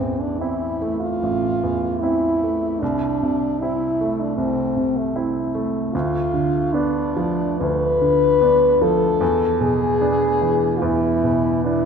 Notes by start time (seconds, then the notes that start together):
Already playing: A1 C4
0.00 E2
0.20 D4
0.40 C4 E4
0.82 A3
1.00 F4
1.23 A1
1.63 E2
2.00 C4 E4
2.43 A3
2.80 C2 D4
3.23 C3
3.60 C4 E4
4.01 A3
4.20 D4
4.37 C2 C4
4.76 C3
4.97 A3
5.16 C4 E4
5.55 A3
5.94 D2 F4
6.34 D3
6.73 B3 D4
7.16 F3
7.60 D2 B4
8.01 D3
8.41 B3 D4
8.81 F3 A4
9.21 E2
9.61 B2 G#4
10.01 B3 D4
10.42 E3
10.78 F4
10.82 E2 E4
11.24 B2
11.64 B3 D4 E4